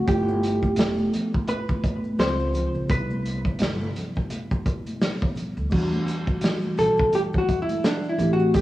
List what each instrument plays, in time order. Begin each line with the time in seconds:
0.06 upright bass G1, tine electric piano A3 B3 E4 F4, hollow-body jazz guitar G4, kick, closed hi-hat, maracas
0.28 high conga, maracas
0.43 closed hi-hat, high conga, maracas
0.63 kick, maracas
0.76 upright bass E1, snare, closed hi-hat, maracas
0.98 high conga, maracas
1.13 closed hi-hat, low conga, maracas
1.33 kick, maracas
1.48 hollow-body jazz guitar B4, closed hi-hat, high conga, maracas
1.69 kick, maracas
1.84 kick, closed hi-hat, maracas
2.04 high conga, maracas
2.18 upright bass C#2, tine electric piano C#3 G#3 C4 F4, hollow-body jazz guitar C5, snare, closed hi-hat, maracas
2.39 maracas
2.54 closed hi-hat, low conga, maracas
2.75 upright bass A#1, maracas
2.88 upright bass C2, tine electric piano C3 G3 B3 D#4, hollow-body jazz guitar B4, kick, closed hi-hat, maracas
2.97 tine electric piano E4
3.10 high conga, maracas
3.25 closed hi-hat, high conga, maracas
3.45 kick, maracas
3.59 upright bass G1, snare, closed hi-hat, maracas
3.81 high conga, maracas
3.95 closed hi-hat, low conga, maracas
4.15 kick, maracas
4.30 closed hi-hat, high conga, maracas
4.51 kick, maracas
4.66 kick, closed hi-hat, maracas
4.87 closed hi-hat, high conga, maracas
5.01 snare, closed hi-hat, low conga, maracas
5.21 kick, maracas
5.35 closed hi-hat, low conga, maracas
5.57 upright bass D2, maracas
5.70 upright bass E2, tine electric piano E3 G3 D4 F#4, kick, crash, maracas
5.92 high conga, maracas
6.07 closed hi-hat, high conga, maracas
6.27 kick, maracas
6.41 snare, closed hi-hat, maracas
6.62 high conga, maracas
6.77 upright bass B1, hollow-body jazz guitar A4, closed hi-hat, low conga, maracas
6.97 kick, maracas
7.12 hollow-body jazz guitar G4, closed hi-hat, high conga, maracas
7.33 kick, maracas
7.38 hollow-body jazz guitar F#4
7.48 kick, closed hi-hat, maracas
7.62 hollow-body jazz guitar E4
7.69 closed hi-hat, high conga, maracas
7.83 hollow-body jazz guitar D4, snare, closed hi-hat, maracas
8.04 maracas
8.09 hollow-body jazz guitar E4
8.18 upright bass A1, tine electric piano E3 A3 C4 G4, closed hi-hat, low conga, maracas
8.33 hollow-body jazz guitar F#4
8.39 maracas
8.54 hollow-body jazz guitar G4, kick, closed hi-hat, maracas